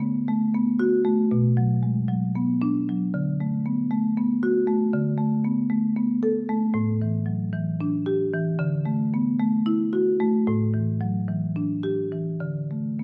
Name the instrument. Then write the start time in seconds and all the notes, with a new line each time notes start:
marimba
Already playing: D3 A3
0.00 B3
0.28 A3
0.55 B3
0.79 F#4
1.05 A3
1.31 B2
1.57 F#3
1.83 G#3
2.08 F#3
2.35 B3
2.62 D4
2.89 F#3
3.14 D3
3.40 A3
3.66 B3
3.91 A3
4.17 B3
4.43 F#4
4.67 A3
4.93 D3
5.18 A3
5.45 B3
5.70 A3
5.97 B3
6.23 A4
6.49 A3
6.74 A2
7.02 E3
7.26 F#3
7.53 E3
7.81 D4
8.06 G4
8.33 E3
8.59 D3
8.86 A3
9.14 B3
9.40 A3
9.66 E4
9.93 F#4
10.20 A3
10.47 A2
10.74 E3
11.01 F#3
11.28 E3
11.56 D4
11.83 G4
12.12 E3
12.40 D3
12.71 A3
12.99 B3